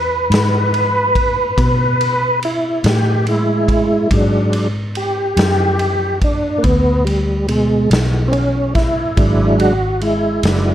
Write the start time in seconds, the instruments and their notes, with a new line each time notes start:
Already playing: fingered electric bass E2, tonewheel organ B4
0.30 fingered electric bass G#2, snare, ride
0.74 ride
1.15 kick, ride
1.58 fingered electric bass B2, kick, ride
2.01 ride
2.43 tonewheel organ E4, ride
2.84 fingered electric bass A2, tonewheel organ G4, snare, ride
3.27 tonewheel organ G#3 E4, ride
3.68 kick, ride
4.11 fingered electric bass G#2, tonewheel organ F#3 G#3 D4, kick, ride
4.53 ride
4.95 tonewheel organ G4, ride
5.37 fingered electric bass F#2, snare, ride
5.79 ride
6.22 tonewheel organ D4, kick, ride
6.58 tonewheel organ A#3
6.63 fingered electric bass D2, tonewheel organ B3, kick, ride
7.05 tonewheel organ G3, ride
7.48 tonewheel organ B2 G#3, ride
7.91 fingered electric bass B1, snare, ride
8.28 tonewheel organ C4 C#4
8.33 ride
8.75 tonewheel organ E4, kick, snare, ride
9.16 fingered electric bass G#1, tonewheel organ F#3 G#3 D4, kick, ride
9.60 tonewheel organ F#4, ride
10.01 tonewheel organ G#3 E4, ride
10.43 fingered electric bass F#1, tonewheel organ F#3 G#3 D4, snare, ride